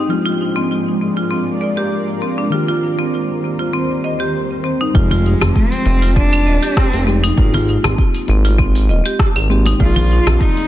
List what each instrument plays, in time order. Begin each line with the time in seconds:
Already playing: ambient pad G#3
0.08 synth keys F3 G#3 A#3 C4 D4, ambient pad F4 A#4 D5, marimba F4
0.25 marimba F4
0.56 marimba C4
1.17 marimba F4
1.31 marimba C4
1.61 marimba D5
1.77 marimba G4
2.22 marimba C4
2.38 marimba D4
2.50 synth keys D#3 A#3 C4, ambient pad D#3 G3 C5, marimba F4
2.54 synth keys G4
2.68 marimba F4
2.99 marimba C4
3.59 marimba F4
3.73 marimba C4
4.04 marimba D#5
4.20 marimba G4
4.64 marimba C4
4.81 marimba D#4
4.93 analog synth bass F1, synth keys F3 G#3 C4 D#4, cello G#3, marimba F4, kick, cabasa
4.97 synth keys G4
5.11 marimba F4, open hi-hat, low conga
5.26 cabasa
5.41 analog synth bass F1, marimba C4, cross-stick, open hi-hat, high conga, low conga, cabasa
5.55 cello C4, kick, cabasa
5.72 open hi-hat, high conga
5.86 analog synth bass F1, muted conga, cabasa
6.02 marimba F4, open hi-hat, cabasa
6.16 marimba C4, cello D4, kick, cabasa
6.33 open hi-hat, cabasa, claves
6.47 analog synth bass D#1, marimba D#5, cabasa
6.62 marimba G4, open hi-hat, cabasa
6.77 cello C4, kick, cross-stick, cabasa
6.93 analog synth bass F1, open hi-hat, muted conga, cabasa
7.06 synth keys F3 G#3 C4 D#4 G4, cello G#3, marimba C4, cabasa
7.15 cello G3
7.22 cello G#3, marimba D#4, open hi-hat, cabasa
7.35 analog synth bass G#1, synth keys G#3 A#3 C4 D#4 G4, marimba F4, kick, cabasa
7.54 marimba F4, open hi-hat, low conga
7.68 cabasa
7.84 analog synth bass G#1, marimba C4, cross-stick, open hi-hat, low conga, cabasa
7.98 kick, cabasa
8.14 open hi-hat
8.28 analog synth bass G#1, muted conga, cabasa
8.45 marimba F4, open hi-hat, high conga, cabasa
8.59 marimba C4, kick, cabasa
8.75 open hi-hat, cabasa
8.89 analog synth bass D#1, marimba D#5, cabasa
9.06 marimba G4, open hi-hat, cabasa
9.19 kick, cross-stick, cabasa
9.35 analog synth bass G#1, open hi-hat, cabasa, claves
9.49 synth keys G#3 A#3 C4 D#4 G4, marimba C4, cabasa
9.66 marimba D#4, open hi-hat, muted conga, cabasa
9.77 analog synth bass A#1, synth keys F3 A#3 C4 D5, cello F4, marimba F4, kick, cabasa
9.82 synth keys G#4
9.96 marimba F4, open hi-hat, low conga
10.11 cabasa
10.26 analog synth bass A#1, marimba C4, cross-stick, open hi-hat, high conga, low conga, cabasa
10.41 cello D#4, kick, cabasa
10.57 open hi-hat, high conga